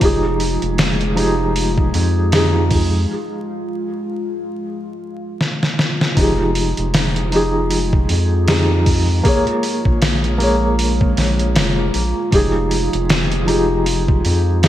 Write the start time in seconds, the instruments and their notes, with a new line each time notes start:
Already playing: ambient pad G#3 F4
0.00 analog synth bass F1, felt piano F3 D#4 G4, kick, open hi-hat
0.05 felt piano G#4
0.40 open hi-hat
0.62 analog synth bass F1, closed hi-hat
0.78 snare, open hi-hat
1.01 closed hi-hat
1.15 felt piano F3 D#4 G4, open hi-hat
1.20 felt piano G#4
1.56 open hi-hat
1.78 kick
1.94 analog synth bass F2, open hi-hat
2.32 felt piano F3 D#4 G4 G#4, snare, open hi-hat
2.71 kick, open hi-hat
5.41 snare
5.63 snare
5.79 snare
6.01 snare
6.15 analog synth bass F1, felt piano F3 D#4 G4, ambient pad G#3 F4, kick, open hi-hat
6.20 felt piano G#4
6.55 open hi-hat
6.77 analog synth bass F1, closed hi-hat
6.94 snare, open hi-hat
7.16 closed hi-hat
7.31 felt piano F3 D#4 G4, open hi-hat
7.36 felt piano G#4
7.71 open hi-hat
7.93 kick
8.09 analog synth bass F2, open hi-hat
8.48 felt piano F3 D#4 G4 G#4, snare, open hi-hat
8.86 kick, open hi-hat
9.23 felt piano A#3 G#4, kick, open hi-hat
9.28 felt piano C#5
9.47 closed hi-hat
9.63 open hi-hat
9.85 analog synth bass A#1, kick
10.02 snare, open hi-hat
10.24 closed hi-hat
10.38 felt piano A#3 G#4, open hi-hat
10.43 felt piano C#5
10.79 open hi-hat
11.01 kick
11.17 analog synth bass A#1, snare, open hi-hat
11.39 closed hi-hat
11.56 analog synth bass F1, snare, open hi-hat
11.94 analog synth bass A#1, open hi-hat
12.31 analog synth bass F1, felt piano F3 D#4 G4, kick, open hi-hat
12.35 felt piano G#4
12.71 open hi-hat
12.93 analog synth bass F1, closed hi-hat
13.09 snare, open hi-hat
13.32 closed hi-hat
13.46 felt piano F3 D#4 G4, open hi-hat
13.50 felt piano G#4
13.86 open hi-hat
14.08 kick
14.25 analog synth bass F2, open hi-hat
14.62 felt piano F3 D#4 G4 G#4, snare, open hi-hat